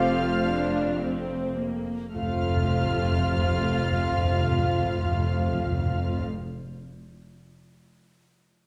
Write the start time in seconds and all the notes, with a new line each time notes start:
Already playing: F1 F2 C3 F3 A3 C4 F4 C5 F5 F6
0.47 D4
1.02 C4
1.59 A#3
2.14 F1 F2 C3 F3 A3 C4 F4 F5 F6
2.22 F2
2.29 F2
2.36 F2
2.43 F2
2.49 F2
2.56 F2
2.63 F2
2.70 F2
2.77 F2
2.84 F2
2.91 F2
2.98 F2
3.04 F2
3.11 F2
3.17 F2
3.24 F2
3.31 F2
3.37 F2
3.43 F2
3.50 F2
3.57 F2
3.64 F2
3.71 F2
3.78 F2
3.85 F2
3.92 F2
3.98 F2
4.04 F2
4.11 F2
4.17 F2
4.25 F2
4.31 F2
4.38 F2
4.44 F2
4.51 F2
4.57 F2
4.64 F2
4.71 F2
4.78 F2
4.84 F2
4.91 F2
4.98 F2
5.05 F2
5.12 F2
5.18 F2
5.25 F2
5.32 F2
5.39 F2
5.46 F2
5.52 F2
5.59 F2
5.65 F2
5.72 F2
5.79 F2
5.85 F2
5.92 F2
5.98 F2
6.04 F2
6.11 F2
6.18 F2
6.24 F2